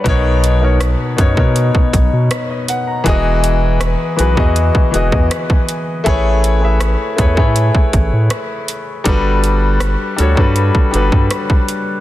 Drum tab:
HH |x-x-x-x-x-x-x-x-|x-x-x-x-x-x-x-x-|x-x-x-x-x-x-x-x-|x-x-x-x-x-x-x-x-|
SD |----r-------r---|----r-------r---|----r-------r---|----r-------r---|
BD |o-----oo-oo-----|o------o-o-o-o--|o-----oo-oo-----|o------o-o-o-o--|